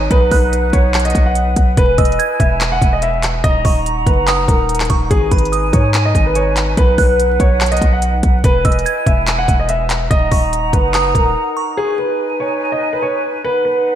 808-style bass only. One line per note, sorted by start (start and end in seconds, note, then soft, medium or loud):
0.11 0.31 B1 loud
0.32 0.72 B1 loud
0.73 1.13 B1 loud
1.15 1.55 B1 loud
1.57 1.77 B1 loud
1.77 1.97 E1 loud
1.98 2.18 E1 loud
2.40 2.80 E1 loud
2.82 3.42 E1 loud
3.44 3.64 D#1 loud
3.65 4.05 D#1 loud
4.07 4.47 F#1 loud
4.48 4.88 D#1 loud
4.90 5.10 D#1 loud
5.11 5.31 G#1 loud
5.32 5.72 G#1 loud
5.73 6.13 G#2 loud
6.15 6.75 G#1 loud
6.77 6.97 B1 loud
6.98 7.38 B1 loud
7.40 7.80 B1 loud
7.82 8.22 B1 loud
8.23 8.43 B1 loud
8.44 8.64 E1 loud
8.65 8.85 E1 loud
9.07 9.47 E1 loud
9.48 10.08 E1 loud
10.11 10.31 D#1 loud
10.32 10.72 D#1 loud
10.73 11.13 F#1 loud
11.15 11.35 D#1 loud